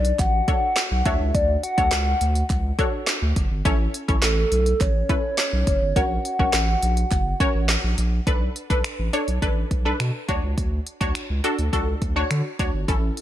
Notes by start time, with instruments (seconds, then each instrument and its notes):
Already playing: sub bass B1, synth pluck D4 F#4 A4 B4, soft synth lead D5
0.05 closed hi-hat
0.19 sub bass A1, soft synth lead F#5, kick, clap, closed hi-hat
0.48 synth pluck D4 F#4 A4 C#5, kick, closed hi-hat
0.76 snare, clap, closed hi-hat
0.91 sub bass B1
1.05 sub bass D2, synth pluck D4 F#4 A4 C#5, soft synth lead E5, kick, closed hi-hat
1.20 sub bass C#2
1.35 sub bass D2, soft synth lead D5, kick, closed hi-hat
1.63 soft synth lead F#5, closed hi-hat
1.78 sub bass D2, synth pluck D4 F#4 A4 C#5, kick, closed hi-hat
1.91 sub bass C#2, snare, clap, closed hi-hat
2.21 sub bass D2, closed hi-hat
2.35 closed hi-hat
2.50 sub bass C#2, kick, clap, closed hi-hat
2.79 synth pluck D4 F#4 A4 C#5, kick, closed hi-hat
3.07 snare, clap, closed hi-hat
3.22 sub bass D2
3.36 sub bass F#1, kick, closed hi-hat
3.51 sub bass G1
3.65 sub bass A1, synth pluck C#4 E4 A4 C#5, kick, closed hi-hat
3.94 closed hi-hat
4.08 sub bass A1, synth pluck C#4 E4 A4 C#5, kick, closed hi-hat
4.22 sub bass A1, soft synth lead A4, snare, clap, closed hi-hat
4.52 sub bass B1, closed hi-hat
4.66 closed hi-hat
4.81 sub bass A1, soft synth lead C#5, kick, clap, closed hi-hat
5.09 synth pluck C#4 E4 A4 B4, kick, closed hi-hat
5.38 snare, clap, closed hi-hat
5.53 sub bass B1
5.67 sub bass F#1, kick, closed hi-hat
5.82 sub bass G1
5.96 sub bass A#1, synth pluck C#4 F#4 A#4 C#5, soft synth lead F#5, kick, closed hi-hat
6.25 closed hi-hat
6.39 sub bass A#1, synth pluck C#4 F#4 A#4 C#5, kick
6.53 sub bass A1, snare, clap, closed hi-hat
6.83 sub bass A#1, closed hi-hat
6.97 closed hi-hat
7.11 sub bass F#1, kick, clap, closed hi-hat
7.40 sub bass A1, synth pluck C#4 F#4 A#4 C#5, kick, closed hi-hat
7.55 sub bass A1
7.69 snare, clap, closed hi-hat
7.84 sub bass A#1
7.98 sub bass A#1, closed hi-hat
8.27 sub bass B1, synth pluck D4 A4 B4, kick, closed hi-hat
8.56 closed hi-hat
8.70 sub bass B1, synth pluck D4 A4 B4, kick, closed hi-hat
8.84 finger snap, closed hi-hat
8.99 sub bass A1
9.13 synth pluck D4 A4 C#5, closed hi-hat
9.28 sub bass B1, closed hi-hat
9.42 sub bass A1, synth pluck D4 A4 B4, kick, closed hi-hat
9.71 sub bass B1, kick, closed hi-hat
9.85 synth pluck D4 A4 B4
10.00 sub bass B2, finger snap, closed hi-hat
10.28 sub bass D2, synth pluck D4 F#4 C#5, kick, closed hi-hat
10.43 sub bass C#2
10.58 sub bass D2, kick, closed hi-hat
10.87 closed hi-hat
11.01 sub bass D2, synth pluck D4 F#4 C#5, kick, closed hi-hat
11.15 finger snap, closed hi-hat
11.30 sub bass C#2
11.44 synth pluck D4 F#4 A4, closed hi-hat
11.59 sub bass D2, closed hi-hat
11.73 sub bass C#2, synth pluck D4 F#4 A4, kick, closed hi-hat
12.02 sub bass D2, kick, closed hi-hat
12.16 synth pluck D4 F#4 C#5
12.31 sub bass D3, finger snap, closed hi-hat
12.59 sub bass D2, synth pluck D4 F#4 C#5, kick, closed hi-hat
12.74 sub bass G1
12.88 sub bass A1, synth pluck C#4 E4 A4, kick, closed hi-hat
13.17 closed hi-hat